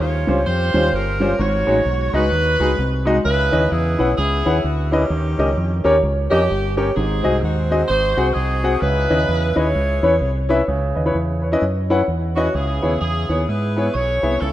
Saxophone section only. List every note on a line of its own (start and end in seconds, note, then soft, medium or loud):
0.00 0.42 C#4 medium
0.00 0.45 F4 medium
0.00 0.45 G4 medium
0.00 0.43 C#5 loud
0.46 1.35 F4 medium
0.46 0.92 G4 medium
0.46 0.93 C5 loud
0.93 1.36 C#4 medium
0.93 1.36 G4 medium
0.93 1.39 A#4 medium
1.40 2.13 F#4 medium
1.40 2.14 C#5 medium
2.14 3.03 D#4 medium
2.14 3.03 F#4 medium
2.14 3.07 B4 loud
3.25 4.14 D#4 medium
3.25 3.71 E4 medium
3.25 3.68 B4 loud
3.71 4.17 B3 medium
3.71 4.17 E4 medium
3.71 4.16 G#4 loud
4.18 5.07 B3 medium
4.18 5.07 E4 medium
4.18 4.61 G#4 medium
4.63 4.91 F#4 medium
4.90 5.81 A#3 medium
4.90 5.81 C#4 medium
4.90 5.84 G4 medium
6.31 6.92 A#3 medium
6.31 6.92 C#4 medium
6.31 6.74 G4 medium
6.77 6.95 G4 medium
6.96 7.85 C4 medium
6.96 7.41 D#4 medium
6.96 7.42 G#4 medium
7.41 7.88 D#4 medium
7.41 7.89 F#4 medium
7.41 7.87 C5 loud
7.88 8.34 D#4 medium
7.88 8.78 F#4 medium
7.88 8.32 C5 loud
8.34 8.79 C4 medium
8.34 8.79 D#4 medium
8.34 8.81 G#4 medium
8.81 9.71 D#4 medium
8.81 9.56 E4 medium
8.81 9.56 B4 loud
9.55 10.46 E4 medium
9.55 10.46 G#4 medium
9.55 10.49 C#5 loud
12.36 12.53 F#4 medium
12.55 13.01 B3 medium
12.55 13.01 E4 medium
12.55 13.00 G#4 medium
13.01 13.91 B3 medium
13.01 13.47 E4 medium
13.01 13.44 G#4 medium
13.47 13.94 E4 medium
13.47 13.94 G#4 medium
13.47 13.94 B4 loud
13.94 14.38 E4 medium
13.94 14.38 G#4 medium
13.94 14.41 C#5 loud
14.41 14.53 E4 medium
14.41 14.53 A4 medium